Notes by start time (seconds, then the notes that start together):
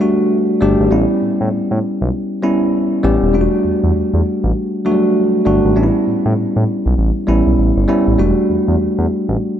0.00 G3 A3 D4 F#4
0.61 G1 G3 A3 D4 G4
0.80 G#1
0.91 A1 G3 B3 C#4 E4
1.22 A2
1.41 A2
1.52 A2
1.71 A2
2.01 B1
2.43 G3 B3 C#4 E4
3.03 A1 G3 B3 C#4 G4
3.23 D#1
3.33 E1 G3 A3 D4 F4
3.41 F#4
3.65 E2
3.83 E2
3.95 E2
4.14 E2
4.44 A1
4.85 F#3 A3 D4 F#4
4.92 G3
5.45 G1 G3 A3 D4 F#4
5.65 G#1
5.76 A1 G3 B3 C#4 D4
5.83 E4
6.07 A2
6.25 A2
6.37 A2
6.56 A2
6.86 B1
6.98 A1
7.27 A1 G3 B3 C#4 E4
7.47 B1
7.58 A1
7.77 G1
7.88 G3 B3 C#4 E4
8.07 A1
8.19 E1 G3 A3 D4 F#4
8.50 E2
8.68 E2
8.80 E2
8.98 E2
9.29 A1